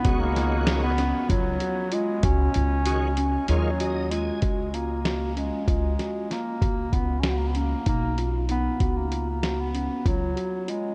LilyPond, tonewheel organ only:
\new Staff \with { instrumentName = "Tonewheel organ" } { \time 7/8 \key ges \major \tempo 4 = 96 <ees aes des' ges'>4. r2 | r4 <ees aes des' ges'>8 r8 <ees aes des' f'>8 ees''8 aes''8 | r2. r8 | r2. r8 |
r2. r8 | }